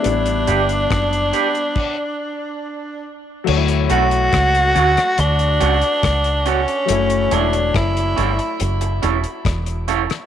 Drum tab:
CC |--------x-------|x---------------|----------------|
HH |xxxxxxxx--------|-xxxxxxxxxxxxxxx|xxxxxxxxxxxxxxxx|
SD |----r-----------|----r--r----r---|----r-------r--r|
BD |----o---o-------|----o-------o---|----o-------o---|